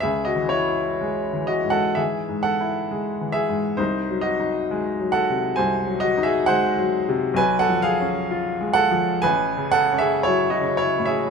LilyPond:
<<
  \new Staff \with { instrumentName = "Grand piano" } { \time 4/4 \key cis \minor \tempo 4 = 65 <gis' e''>16 <fis' dis''>16 <e' cis''>4 <fis' dis''>16 <a' fis''>16 <gis' e''>8 <a' fis''>4 <gis' e''>8 | <dis' bis'>8 <fis' dis''>4 <a' fis''>8 <bis' gis''>8 <fis' dis''>16 <gis' e''>16 <bis' fis''>4 | <b' gis''>16 <a' fis''>16 <gis' eis''>4 <a' fis''>8 <b' gis''>8 <a' fis''>16 <gis' e''>16 <e' cis''>16 <fis' dis''>16 <e' cis''>16 <gis' e''>16 | }
  \new Staff \with { instrumentName = "Grand piano" } { \clef bass \time 4/4 \key cis \minor \tuplet 3/2 { cis,8 e8 e'8 gis8 e8 gis,8 e8 gis,8 e'8 gis8 e8 gis,8 } | \tuplet 3/2 { bis,,8 fis8 dis'8 gis8 fis8 bis,8 bis,,8 fis8 dis'8 gis8 fis8 bis,8 } | \tuplet 3/2 { b,,8 eis8 cis'8 eis'8 gis8 eis8 a,,8 cis8 cis'8 fis8 cis8 a,8 } | }
>>